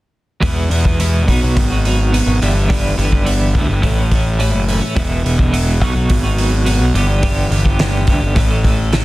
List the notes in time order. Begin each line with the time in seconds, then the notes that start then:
0.40 E2 B2 E3 G#3 B3 E4, kick, open hi-hat
0.70 E2 E3 G#3 B3 E4, open hi-hat
0.84 E3 G#3 B3 E4, kick
0.99 E2 B2 E3 G#3 B3 E4, open hi-hat
1.27 B1 B2 F#3 B3 D#4 F#4, kick, open hi-hat
1.41 B1 B3 D#4 F#4
1.57 G#1, kick, open hi-hat
1.70 B3 D#4 F#4
1.84 F#3 B3 D#4 F#4, open hi-hat
2.12 B2 F#3 B3 D#4 F#4, open hi-hat
2.26 G#1
2.41 G1 G2 D3 E3 G3 B3 E4, open hi-hat
2.54 E3 G3 B3 E4
2.69 G2 D3 E3 G3 B3 E4, kick, open hi-hat
2.96 G1 E3 G3 B3 E4, open hi-hat
3.11 E3 G3 B3 E4, kick
3.24 G2 D3 E3 G3 B3 E4, open hi-hat
3.53 D2 E3 G3 B3 E4, kick, open hi-hat
3.68 G1 E3 G3 B3 E4
3.81 A1 A2 E3 A3 C#4 E4, kick, open hi-hat
3.96 A3 C#4 E4
4.10 E3 A3 C#4 E4, kick, open hi-hat
4.38 A2 E3 A3 C#4 E4, open hi-hat
4.54 F#1
4.67 E3 A3 C#4 E4, open hi-hat
4.81 A3 C#4 E4
4.95 E1 E2 B2 E3 G#3 B3 E4, kick, open hi-hat
5.23 E1 E3 G#3 B3 E4, open hi-hat
5.38 E3 E4, kick
5.51 E2 B2 E3 G#3 B3 E4, open hi-hat
5.81 B1 B2 F#3 B3 D#4 F#4, kick, open hi-hat
5.94 B1 B3 D#4 F#4
6.10 G#1, kick, open hi-hat
6.23 B3 D#4 F#4
6.36 F#3 B3 D#4 F#4, open hi-hat
6.65 B2 F#3 B3 D#4 F#4, open hi-hat
6.82 B1
6.94 G1 G2 D3 E3 G3 B3 G4, open hi-hat
7.08 E3 G3 B3 G4
7.22 G2 D3 E3 G3 B3 G4, kick, open hi-hat
7.50 G1 E3 G3 B3 G4, open hi-hat
7.64 E3 G3 B3 G4, kick
7.79 G2 D3 E3 G3 B3 G4, snare, open hi-hat
8.07 D2 E3 G3 B3 G4, kick, open hi-hat
8.21 G1 E3 G3 B3 G4
8.35 A1 A2 E3 A3 C#4 A4, kick, open hi-hat
8.51 A3 C#4 A4
8.63 E3 A3 C#4 A4, kick, open hi-hat
8.92 A2 E3 A3 C#4 A4, snare, open hi-hat